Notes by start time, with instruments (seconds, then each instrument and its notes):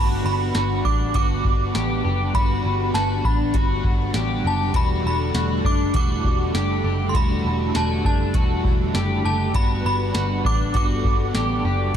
Already playing: picked electric bass G1, string machine D3 G3 B3 F#5, overdriven electric guitar G3 D4 F#4 B4, clean electric guitar F#4, synth bell B5
0.23 picked electric bass G1, overdriven electric guitar F#4 B4, synth bell B5
0.29 overdriven electric guitar D4
0.55 picked electric bass G1, clean electric guitar F#4, snare, closed hi-hat
0.85 picked electric bass A1, clean electric guitar D4, synth bell D6, kick
1.14 picked electric bass G1, overdriven electric guitar G3 D4 F#4, clean electric guitar F#4, synth bell D6, kick, closed hi-hat
1.18 overdriven electric guitar B4
1.44 picked electric bass G1, overdriven electric guitar F#4 B4, kick
1.50 overdriven electric guitar D4
1.75 picked electric bass A1, clean electric guitar G4, snare, closed hi-hat
2.05 picked electric bass F#1, clean electric guitar G4
2.33 picked electric bass G1, overdriven electric guitar G3 D4 F#4, clean electric guitar F#4, synth bell B5, kick, closed hi-hat
2.38 overdriven electric guitar B4
2.63 picked electric bass G1, overdriven electric guitar F#4 B4
2.69 overdriven electric guitar D4
2.94 picked electric bass G1, clean electric guitar F#4, synth bell A5, snare, closed hi-hat
3.25 picked electric bass A1, clean electric guitar D4, synth bell B5, kick
3.52 picked electric bass G1, overdriven electric guitar G3 D4, clean electric guitar F#4, kick, closed hi-hat
3.58 overdriven electric guitar F#4 B4
3.84 picked electric bass G1, kick
4.14 picked electric bass A1, clean electric guitar G4, snare, closed hi-hat
4.45 picked electric bass F#1, clean electric guitar G4, synth bell A5
4.73 picked electric bass E1, overdriven electric guitar E3 G3 D4 E4, string machine A3, clean electric guitar F#4, synth bell B5, kick, closed hi-hat
4.77 overdriven electric guitar A4
5.03 picked electric bass E1, overdriven electric guitar E4 A4, synth bell B5
5.09 overdriven electric guitar D4
5.34 picked electric bass E1, clean electric guitar F#4, snare, closed hi-hat
5.65 picked electric bass F#1, clean electric guitar D4, synth bell D6, kick
5.93 picked electric bass E1, overdriven electric guitar E3 G3 D4 E4, clean electric guitar F#4, synth bell D6, kick, closed hi-hat
5.97 overdriven electric guitar A4
6.24 picked electric bass E1, overdriven electric guitar E4 A4, kick
6.29 overdriven electric guitar D4
6.54 picked electric bass F#1, clean electric guitar G4, snare, closed hi-hat
6.84 picked electric bass F#1, clean electric guitar G4
7.09 synth bell C6
7.14 picked electric bass E1, overdriven electric guitar E3 G3 D4 E4, clean electric guitar F#4, synth bell B5, kick, closed hi-hat
7.18 overdriven electric guitar A4
7.43 picked electric bass E1, overdriven electric guitar E4 A4
7.49 overdriven electric guitar D4
7.75 picked electric bass E1, clean electric guitar F#4, synth bell A5, snare, closed hi-hat
8.05 picked electric bass F#1, clean electric guitar D4, synth bell A5, kick
8.34 picked electric bass E1, overdriven electric guitar E3 G3 D4 E4, clean electric guitar F#4, kick, closed hi-hat
8.38 overdriven electric guitar A4
8.63 picked electric bass E1, overdriven electric guitar E4 A4, kick
8.69 overdriven electric guitar D4
8.94 picked electric bass F#1, clean electric guitar G4, snare, closed hi-hat
9.25 picked electric bass F#1, clean electric guitar G4, synth bell A5
9.54 picked electric bass G1, overdriven electric guitar G3 D4 F#4, string machine B3, clean electric guitar F#4, synth bell B5, kick, closed hi-hat
9.58 overdriven electric guitar B4
9.80 vibraphone B4, overdriven electric guitar B4
9.85 picked electric bass G1, overdriven electric guitar F#4, synth bell B5
9.90 overdriven electric guitar D4
10.15 picked electric bass G1, clean electric guitar F#4, snare, closed hi-hat
10.45 picked electric bass A1, clean electric guitar D4, synth bell D6, kick
10.74 picked electric bass G1, overdriven electric guitar G3 D4 F#4, clean electric guitar F#4, synth bell D6, kick, closed hi-hat
10.78 overdriven electric guitar B4
10.94 vibraphone A4
11.04 picked electric bass G1, overdriven electric guitar F#4 B4, kick
11.10 overdriven electric guitar D4
11.35 picked electric bass A1, clean electric guitar G4, snare, closed hi-hat
11.65 picked electric bass F#1, clean electric guitar G4
11.69 vibraphone D5